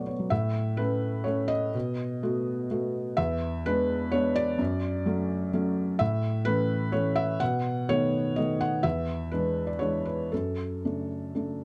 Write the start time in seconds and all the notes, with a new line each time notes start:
Already playing: B2 F#3 A3 B3 C#4 C#5 D5 F#5 C#6
0.07 B3 C#5
0.19 F#3
0.30 A2 E5
0.77 A3 C#4 A4 B4
1.24 A3 C#4 A4 C#5
1.48 D#5
1.74 B2
2.23 A3 B3 F#4
2.71 A3 B3 F#4
3.17 E2 E5
3.66 G#3 B3 D4 B4
4.12 G#3 B3 D4 C#5
4.36 D5
4.58 F#2
5.06 F#3 A3 C#4
5.53 F#3 A3 C#4
5.99 A2 E5
6.45 E3 A3 C#4 B4
6.92 E3 A3 C#4 C#5
7.16 E5
7.40 B2 F#5
7.89 D#3 A3 B3 C#5
8.36 D#3 A3 B3 D#5
8.61 F#5
8.83 E2 E5
9.32 E3 G#3 D4 B4
9.67 D5
9.79 E3 G#3 D4 C#5
10.05 B4
10.32 F#2 A4
10.85 C#3 A3 D4
11.35 C#3 A3 D4